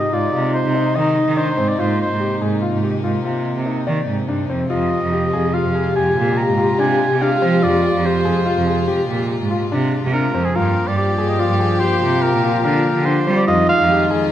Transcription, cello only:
0.13 0.31 G#2 medium
0.34 0.51 C3 medium
0.65 0.83 C3 medium
0.96 1.22 D#3 medium
1.27 1.53 D#3 medium
1.59 1.67 G#2 medium
1.79 2.05 G#2 medium
2.11 2.28 G#2 medium
2.41 2.59 G#2 medium
2.73 2.90 G#2 medium
3.04 3.21 G#2 medium
3.25 3.42 C3 medium
3.56 3.73 C3 medium
3.87 4.04 D#3 medium
4.08 4.26 G#2 medium
4.28 4.47 G2 medium
4.49 4.68 F2 medium
4.70 4.97 F2 medium
5.01 5.19 F2 medium
5.34 5.51 F2 medium
5.65 5.82 F2 medium
5.96 6.14 F2 medium
6.17 6.34 A#2 loud
6.49 6.66 G#2 medium
6.79 7.06 C3 medium
7.10 7.37 C3 medium
7.41 7.50 F3 loud
7.63 7.89 F2 medium
7.94 8.12 F2 medium
8.25 8.43 F2 medium
8.57 8.74 F2 medium
8.88 9.06 F2 medium
9.09 9.26 A#2 medium
9.41 9.58 G#2 medium
9.72 9.98 C3 medium
10.03 10.30 C3 medium
10.34 10.43 F2 medium
10.55 10.82 G2 medium
10.87 11.04 G2 medium
11.18 11.35 G2 medium
11.49 11.67 G2 medium
11.80 11.98 G2 medium
12.01 12.19 C3 loud
12.33 12.50 A#2 medium
12.64 12.90 D3 medium
12.96 13.22 D3 medium
13.27 13.36 G3 loud
13.48 13.74 F2 medium
13.80 13.97 F2 medium
14.11 14.28 F2 medium

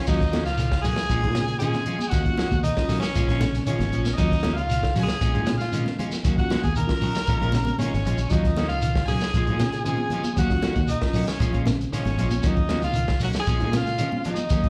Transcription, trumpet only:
0.08 0.44 D#5 medium
0.45 0.81 F5 medium
0.83 1.57 G#5 loud
1.60 2.10 G#5 medium
2.09 2.62 F#5 medium
2.63 3.00 D#5 medium
3.01 3.62 C#5 medium
3.66 4.12 C#5 medium
4.13 4.55 D#5 medium
4.53 4.94 F5 medium
4.99 5.54 G#5 medium
5.57 5.94 F5 medium
6.38 6.62 F#5 medium
6.63 6.75 G#5 medium
6.76 7.75 A#5 medium
7.79 8.34 C#5 medium
8.33 8.69 D#5 medium
8.69 9.05 F5 medium
9.05 9.80 G#5 medium
9.85 10.33 G#5 medium
10.38 10.86 F#5 medium
10.88 11.25 D#5 medium
11.28 11.62 C#5 medium
11.93 12.49 C#5 medium
12.48 12.83 D#5 medium
12.84 13.19 F5 medium
13.23 13.29 F#5 medium
13.39 13.73 G#5 medium
13.77 14.23 F5 medium
14.27 14.69 D#5 medium

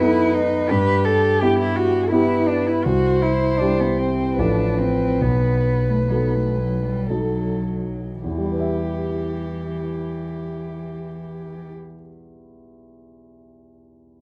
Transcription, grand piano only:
0.00 0.72 F#2 medium
0.00 0.73 B3 soft
0.00 0.73 D#4 soft
0.00 0.02 A4 soft
0.00 0.67 A4 soft
0.71 1.39 G2 medium
1.42 2.08 B3 soft
1.42 2.08 E4 soft
1.42 2.08 G4 soft
2.12 2.80 B3 soft
2.12 2.80 E4 soft
2.12 2.81 G4 soft
2.86 3.58 C2 soft
3.61 4.34 G3 soft
3.61 4.34 E4 soft
3.61 4.34 G4 soft
4.38 5.18 A1 medium
4.38 5.17 F3 soft
4.38 5.17 F4 soft
4.38 5.18 A4 soft
5.21 6.07 B1 soft
6.10 7.06 F#3 soft
6.10 7.06 D#4 soft
6.10 7.06 A4 soft
7.10 8.20 F#3 soft
7.10 8.20 D#4 soft
7.10 8.20 A4 soft
8.24 11.72 E2 soft
8.31 11.79 E3 soft
8.38 11.86 G3 soft
8.45 11.93 E4 soft
8.52 12.00 B4 soft
8.59 12.07 E5 soft

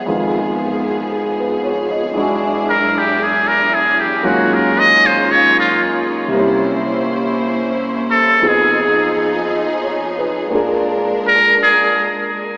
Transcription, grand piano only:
0.00 0.17 F#5 soft
0.06 2.15 F2 soft
0.06 2.15 D#3 soft
0.06 2.15 G#3 soft
0.06 2.16 B3 soft
0.06 2.16 F4 medium
1.11 1.60 G#4 soft
1.40 1.83 B4 soft
1.64 1.96 C#5 soft
1.91 2.26 D#5 soft
2.14 4.23 E2 medium
2.14 4.24 E3 soft
2.14 4.23 G#3 soft
2.14 4.25 D4 soft
2.19 4.26 F#4 medium
4.23 6.33 D#2 medium
4.23 6.33 D#3 soft
4.23 6.33 F#3 medium
4.23 6.33 G#3 medium
4.23 6.33 C#4 medium
4.23 6.34 F4 medium
6.28 8.40 C3 medium
6.28 8.41 G3 soft
6.34 8.43 A#3 soft
6.34 8.44 C#4 soft
6.39 8.45 E4 medium
8.42 10.52 F2 soft
8.42 10.52 F3 soft
8.42 10.52 B3 soft
8.42 10.52 D#4 soft
8.42 10.52 G#4 medium
9.48 10.14 D#5 soft
9.83 10.37 C#5 soft
10.18 10.72 B4 soft
10.50 12.57 A#2 medium
10.50 12.57 A#3 soft
10.50 12.57 D4 soft
10.54 12.57 F4 soft
10.54 12.57 G#4 medium

